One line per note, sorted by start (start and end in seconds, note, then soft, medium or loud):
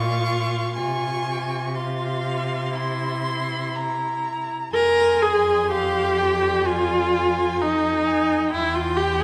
0.00 0.77 A#2 medium
0.00 0.74 F4 medium
0.00 0.75 F5 medium
0.00 0.74 C#6 medium
0.74 4.51 C3 medium
0.74 1.74 F4 medium
0.74 1.64 G#5 medium
0.74 1.77 C#6 medium
1.75 2.73 F4 medium
1.75 2.76 F5 medium
1.75 4.22 C6 medium
2.75 4.48 E4 medium
2.75 3.76 C6 medium
3.75 4.72 A#5 medium
4.73 8.54 F2 medium
4.73 5.24 A#4 loud
4.73 5.72 G#5 medium
4.73 6.66 C6 medium
5.22 5.70 G#4 medium
5.71 6.68 G4 medium
5.71 6.19 F5 medium
6.17 6.66 G5 medium
6.64 7.63 F4 medium
6.64 8.51 G#5 medium
6.64 7.12 G#5 medium
7.13 7.61 G#5 medium
7.60 8.52 D#4 medium
7.60 8.08 A#5 medium
8.06 8.49 G#5 medium
8.49 9.24 E2 medium
8.49 8.77 E4 medium
8.49 9.24 G5 medium
8.49 9.24 C6 medium
8.75 8.98 F4 medium
8.97 9.22 G4 medium